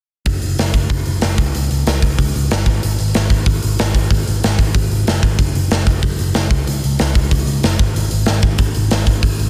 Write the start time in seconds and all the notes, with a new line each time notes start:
0.26 F#1, kick, open hi-hat
0.42 F#1, open hi-hat
0.59 F#1, snare, open hi-hat
0.74 F#1, kick, open hi-hat
0.90 F#1, kick, open hi-hat
1.06 F#1, open hi-hat
1.21 F#1, snare, open hi-hat
1.38 C#2, kick, open hi-hat
1.55 C#2, open hi-hat
1.71 C#2, open hi-hat
1.87 C#2, snare, open hi-hat
2.02 C#2, kick, open hi-hat
2.19 C#2, kick, open hi-hat
2.36 C#2, open hi-hat
2.51 G1, snare, open hi-hat
2.66 G#1, kick, open hi-hat
2.83 G#1, open hi-hat
2.99 G#1, open hi-hat
3.14 G#1, snare, open hi-hat
3.30 G#1, kick, open hi-hat
3.46 G#1, kick, open hi-hat
3.62 G#1, open hi-hat
3.79 G#1, snare, open hi-hat
3.94 G#1, kick, open hi-hat
4.11 G#1, kick, open hi-hat
4.27 G#1, open hi-hat
4.44 G#1, snare, open hi-hat
4.59 G#1, kick, open hi-hat
4.75 G#1, kick, open hi-hat
4.90 G#1, open hi-hat
5.07 F#1, snare, open hi-hat
5.23 G#1, kick, open hi-hat
5.39 F#1, kick, open hi-hat
5.55 F#1, open hi-hat
5.71 F#1, snare, open hi-hat
5.87 F#1, kick, open hi-hat
6.03 F#1, kick, open hi-hat
6.19 F#1, open hi-hat
6.34 F#1, snare, open hi-hat
6.51 C#2, kick, open hi-hat
6.67 C#2, open hi-hat
6.84 C#2, open hi-hat
6.99 C#2, snare, open hi-hat
7.15 C#2, kick, open hi-hat
7.31 C#2, kick, open hi-hat
7.46 C#2, open hi-hat
7.63 F#1, snare, open hi-hat
7.79 G#1, kick, open hi-hat
7.95 G#1, open hi-hat
8.11 G#1, open hi-hat
8.26 G#1, snare, open hi-hat
8.42 G#1, kick, open hi-hat
8.58 G#1, kick, open hi-hat
8.74 G#1, open hi-hat
8.91 G#1, snare, open hi-hat
9.06 G#1, kick, open hi-hat
9.23 G#1, kick, open hi-hat
9.39 G#1, open hi-hat